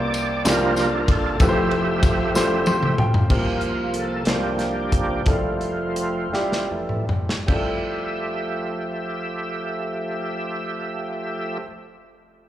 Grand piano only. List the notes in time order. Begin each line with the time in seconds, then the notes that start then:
Already playing: C2 C3 A#3 C4 F4 G4 C5
0.44 C2 C3 A#3 D4 E4 G4 C5
0.51 F4
1.41 F1 F2 A3 E4 F4 G4 B4
1.49 C5
2.34 A3 E4 F4 G4 C5
2.67 C6
2.99 G5
3.30 C2 C3 A#3 F4 G4 C5
4.26 C2 C3 A#3 D4 F4 C5
5.26 F1 F2 G3 E4 F4 A4
6.32 G3 E4 F4 G4
7.47 F2 G3 E4
7.51 F4 A4